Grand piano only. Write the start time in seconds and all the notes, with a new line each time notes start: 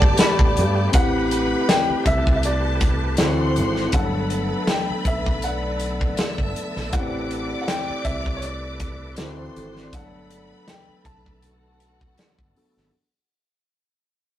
Already playing: A5
0.95 F#5
1.70 G5
2.07 E5
2.36 E5
2.45 D5
3.94 F#5
4.69 G5
5.07 E5
5.44 F#5
6.93 F#5
7.62 F#5
7.68 G5
8.05 E5
8.37 C#5
8.43 D5
9.95 F#5
10.69 G5
11.06 A5